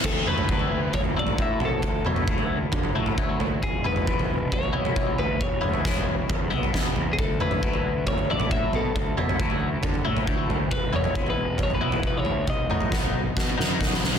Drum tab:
CC |x---------------|----------------|----------------|----------------|
SD |----------------|----------------|----------------|----o-------o---|
T2 |--oo----o-------|--oo----o-------|--oo----o-------|--o-------------|
FT |o--o-o--oo-o--o-|o--o-o--oo-o--o-|o--o-o--oo-o--o-|o--o-o--o-oo--o-|
BD |o---o---o---o---|o---o---o---o---|o---o---o---o---|o---o---o---o---|

CC |----------------|----------------|----------------|----------------|
SD |----------------|----------------|----------------|----o---o-o-oooo|
T2 |--oo----o-------|--oo----o-------|--oo----o-------|--o-------------|
FT |o--o-o--oo-o--o-|o--o-o--oo-o--o-|o--o-o--oo-o--o-|o--o-o----------|
BD |o---o---o---o---|o---o---o---o---|o---o---o---o---|o---o---o---o---|